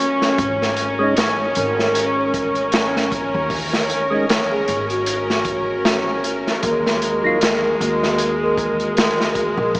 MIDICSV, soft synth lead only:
0, 0, Header, 1, 2, 480
1, 0, Start_track
1, 0, Tempo, 779221
1, 243, Time_signature, 4, 2, 24, 8
1, 6036, End_track
2, 0, Start_track
2, 0, Title_t, "Soft synth lead"
2, 0, Program_c, 0, 80
2, 0, Note_on_c, 0, 66, 99
2, 160, Note_off_c, 0, 66, 0
2, 245, Note_on_c, 0, 73, 106
2, 579, Note_off_c, 0, 73, 0
2, 617, Note_on_c, 0, 73, 94
2, 931, Note_off_c, 0, 73, 0
2, 963, Note_on_c, 0, 70, 106
2, 1297, Note_off_c, 0, 70, 0
2, 1335, Note_on_c, 0, 73, 97
2, 1650, Note_off_c, 0, 73, 0
2, 2058, Note_on_c, 0, 73, 91
2, 2484, Note_off_c, 0, 73, 0
2, 2775, Note_on_c, 0, 68, 87
2, 2990, Note_off_c, 0, 68, 0
2, 3017, Note_on_c, 0, 66, 104
2, 3999, Note_off_c, 0, 66, 0
2, 4083, Note_on_c, 0, 70, 95
2, 4418, Note_off_c, 0, 70, 0
2, 4462, Note_on_c, 0, 70, 93
2, 4774, Note_off_c, 0, 70, 0
2, 4816, Note_on_c, 0, 66, 98
2, 5144, Note_off_c, 0, 66, 0
2, 5191, Note_on_c, 0, 70, 97
2, 5498, Note_off_c, 0, 70, 0
2, 5905, Note_on_c, 0, 70, 99
2, 6036, Note_off_c, 0, 70, 0
2, 6036, End_track
0, 0, End_of_file